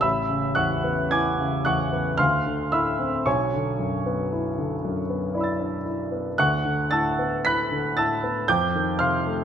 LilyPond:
<<
  \new Staff \with { instrumentName = "Grand piano" } { \time 3/4 \key a \major \tempo 4 = 57 << { <e'' b'' e'''>8 <fis'' cis''' fis'''>8 <gis'' d''' gis'''>8 <fis'' cis''' fis'''>8 <f'' c''' f'''>8 <e'' b'' e'''>8 | <cis'' gis'' cis'''>2~ <cis'' gis'' cis'''>8 r8 | <fis'' cis''' fis'''>8 <a'' e''' a'''>8 <b'' fis''' b'''>8 <a'' e''' a'''>8 <g'' d''' g'''>8 <f'' c''' f'''>8 | } \\ { r2. | r2 <d'' b'' e''' a'''>4 | r2. | } >> }
  \new Staff \with { instrumentName = "Grand piano" } { \clef bass \time 3/4 \key a \major a,,16 cis16 e,16 b16 e'16 cis16 e,16 b16 d,16 d16 a,16 c'16 | b,,16 d16 fis,16 b16 e'16 d16 fis,16 b16 e'16 d'16 e'16 b16 | d,16 d16 a,16 b16 e'16 d16 a,16 b16 f,16 ees16 c16 a16 | }
>>